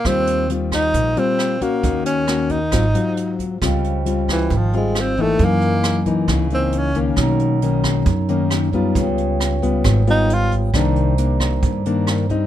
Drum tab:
HH |xxxxxxxx|xxxxxxxx|xxxxxxxx|xxxxxxxx|
SD |r--r--r-|--r-r---|r--r--r-|--r-r---|
BD |o--oo--o|o--oo--o|o--oo--o|o--oo--o|

HH |xxxxxxxx|xxxxxxxx|xxxxxxxx|
SD |r--r--r-|--r-r---|r--r--r-|
BD |o--oo--o|o--oo--o|o--oo--o|